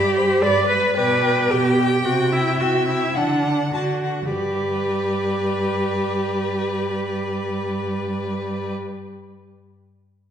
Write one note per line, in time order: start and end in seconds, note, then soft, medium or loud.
0.00 0.36 G2 soft
0.00 0.43 G4 medium
0.00 0.18 D5 soft
0.00 0.15 B5 soft
0.16 0.45 C5 soft
0.16 0.42 B5 soft
0.42 0.90 G2 soft
0.42 0.99 B4 soft
0.42 0.68 D5 medium
0.42 0.67 B5 soft
0.67 0.95 B4 medium
0.67 0.95 B5 soft
0.97 1.44 B2 soft
0.97 1.52 B4 medium
0.97 1.52 D5 soft
0.97 1.23 G5 soft
1.24 1.49 G5 soft
1.50 1.99 B2 soft
1.50 2.06 G4 medium
1.50 1.77 G5 soft
1.50 2.59 G5 medium
1.77 2.04 G5 soft
2.04 2.53 C3 soft
2.04 2.34 F#4 medium
2.04 2.32 G5 soft
2.33 2.62 E4 medium
2.33 2.59 G5 soft
2.59 3.10 C3 soft
2.59 2.87 F#4 medium
2.59 3.17 E5 soft
2.59 2.87 G5 soft
2.88 3.18 E4 soft
2.88 3.15 G5 soft
3.15 3.67 D3 soft
3.15 3.73 D4 soft
3.15 3.73 F#5 soft
3.15 3.44 F#5 soft
3.45 3.73 F#5 soft
3.74 4.26 D3 soft
3.74 4.32 F#4 soft
3.74 4.03 F#5 soft
3.74 3.82 A5 soft
4.04 4.32 F#5 soft
4.32 8.74 G2 soft
4.32 8.74 G4 soft
4.32 8.72 B4 soft
4.32 8.74 D5 soft